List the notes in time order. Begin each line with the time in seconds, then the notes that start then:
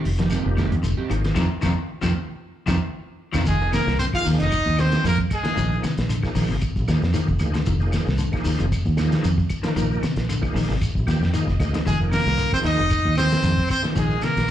0.05 F1, open hi-hat, shekere
0.18 F3 A#3 D#4 G4, snare, closed hi-hat
0.30 G#3 C4 G4, muted clean electric guitar stroke, closed hi-hat, claves, shekere
0.46 F1
0.57 G#3 C4 D#4 G4, muted clean electric guitar stroke, kick, snare, closed hi-hat, claves, shekere
0.72 F2, kick, closed hi-hat
0.83 F1 D3, closed hi-hat, shekere
0.97 C4 D#4 G4, muted fingered electric bass stroke
1.10 G#1 D#3 F3 A#3 D#4 G#4, closed hi-hat, claves, shekere
1.24 snare, closed hi-hat
1.35 F2 C3 D#3 F3 C4 D#4 F4, kick, snare, claves, shekere
1.61 F2 C3 D#3 F3 C4 D#4 F4, kick, snare, claves, shekere
2.01 F2 C3 D#3 F3 C4 D#4 F4, kick, snare, claves, shekere
2.66 F2 C3 D#3 F3 C4 D#4 F4, kick, snare, claves, shekere
3.32 F2 C3 D#3 F3 C4 D#4 F4, kick, snare, claves, shekere
3.45 F1 D#3 G#3 G#4, kick, closed hi-hat, shekere
3.60 F3 A#3 D#4 G#4, shekere
3.72 C3 A#3 A#4, snare, closed hi-hat, claves, shekere
3.87 C2, snare, shekere
3.99 D3 C4 C5, snare, closed hi-hat, shekere
4.13 F3 A#3 D#4 F4 G#4 F5, kick, claves, shekere
4.25 D#2 D#3, open hi-hat, shekere
4.38 F1 C3 D#4 D#5, snare, closed hi-hat, shekere
4.51 kick, closed hi-hat, claves, shekere
4.66 D#2, kick, shekere
4.77 F3 A#3 C4 D#4 G#4 C5, snare, closed hi-hat, claves, shekere
4.92 snare, closed hi-hat, shekere
5.04 F2 F3 A#3 A#4, closed hi-hat, shekere
5.18 kick, shekere
5.30 G#3 G#4, kick, closed hi-hat, claves, shekere
5.43 D3 F3 A#3 D#4 G#4, snare, closed hi-hat, shekere
5.56 A#1 D#3, kick, closed hi-hat, shekere
5.72 shekere
5.83 C3, muted fingered electric bass stroke, snare, closed hi-hat, claves, shekere
5.98 A#1, snare, closed hi-hat, shekere
6.09 D3, closed hi-hat, shekere
6.23 F3 A#3 D#4 G#4, kick, snare, claves, shekere
6.35 A#1 D#3, open hi-hat, shekere
6.49 G#1 C3, shekere
6.62 muted fingered electric bass stroke, kick, closed hi-hat, claves, shekere
6.76 A#1, kick, shekere
6.88 D#2 F3 A#3 D#4 G#4, snare, closed hi-hat, claves, shekere
7.02 F2, snare, shekere
7.13 D#3 F3 A#3 D#4 G#4, closed hi-hat, shekere
7.27 F1, kick, shekere
7.39 D2 F3 A#3 D#4 G#4, kick, closed hi-hat, claves, shekere
7.54 D3, snare, closed hi-hat, shekere
7.66 F1 D#3, kick, closed hi-hat, shekere
7.80 F3 A#3 D#4 G#4, shekere
7.92 G#2, snare, closed hi-hat, claves, shekere
8.06 C2, snare, shekere
8.18 D3, closed hi-hat, shekere
8.32 F3 A#3 D#4 G#4, kick, snare, claves, shekere
8.45 D#2 D#3, open hi-hat, shekere
8.59 F1 C3, closed hi-hat, shekere
8.72 kick, closed hi-hat, claves, shekere
8.85 D#2, kick, shekere
8.97 F3 A#3 D#4 G#4, snare, closed hi-hat, claves, shekere
9.12 snare, closed hi-hat, shekere
9.23 F2 D#3, closed hi-hat, shekere
9.38 kick, shekere
9.49 kick, closed hi-hat, claves, shekere
9.62 D3 F3 A#3 D#4 A#4, snare, closed hi-hat, shekere
9.76 A#1 D#3, kick, closed hi-hat, shekere
9.92 shekere
10.03 C3, muted fingered electric bass stroke, snare, closed hi-hat, claves, shekere
10.16 A#1, snare, closed hi-hat, shekere
10.29 D3, snare, closed hi-hat, shekere
10.41 F3 A#3 D#4 G#4, kick, claves, shekere
10.55 A#1 D#3, open hi-hat, shekere
10.69 G#1 C3, snare, shekere
10.81 kick, closed hi-hat, claves, shekere
10.95 A#1, kick, shekere
11.07 D#2 F3 A#3 D#4 G4 G5, snare, closed hi-hat, claves, shekere
11.20 F2, snare, shekere
11.33 D#3 F3 A#3 D#4 G#4 D#5, closed hi-hat, shekere
11.48 F1, kick, snare, shekere
11.60 D2 F3 A#3 D#4 G#4, kick, closed hi-hat, claves, shekere
11.74 D3, snare, closed hi-hat, shekere
11.86 F1 D#3 G#3 G#4, kick, closed hi-hat, shekere
11.99 F3 A#3 D#4 A#4, shekere
12.11 C3 A#3 A#4, snare, closed hi-hat, claves, shekere
12.26 C2, snare, shekere
12.38 D3, closed hi-hat, shekere
12.51 F3 A#3 C4 D#4 G#4 C5, kick, snare, claves, shekere
12.63 D#2 D#3 D#4 D#5, open hi-hat, shekere
12.78 F1 C3, closed hi-hat, shekere
12.90 kick, closed hi-hat, claves, shekere
13.04 D#2, kick, shekere
13.16 F3 A#3 C4 D#4 G#4 C5, snare, closed hi-hat, claves, shekere
13.31 snare, closed hi-hat, shekere
13.42 F2 D#3, closed hi-hat, shekere
13.57 kick, snare, shekere
13.69 C4 C5, kick, closed hi-hat, claves, shekere
13.82 D3 F3 A#3 D#4 G#4, snare, closed hi-hat, shekere
13.96 A#1 D#3 G#3 G#4, kick, closed hi-hat, shekere
14.10 shekere
14.21 C3 A#3 A#4, muted fingered electric bass stroke, snare, closed hi-hat, claves, shekere
14.36 A#1, snare, closed hi-hat, shekere